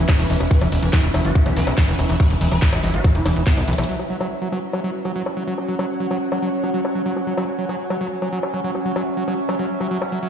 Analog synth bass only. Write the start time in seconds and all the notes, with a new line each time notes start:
0.19 E1
0.30 E1
0.40 E1
0.61 E1
0.72 E1
0.82 E1
1.04 E1
1.14 E1
1.25 F#1
1.46 B1
1.56 B1
1.67 B1
1.88 E1
1.99 E1
2.09 E1
2.30 E1
2.41 E1
2.52 E1
2.73 G#1
2.83 G#1
2.94 G#1
3.15 E1
3.26 E1
3.36 E1
3.57 B1
3.68 B1
3.78 B1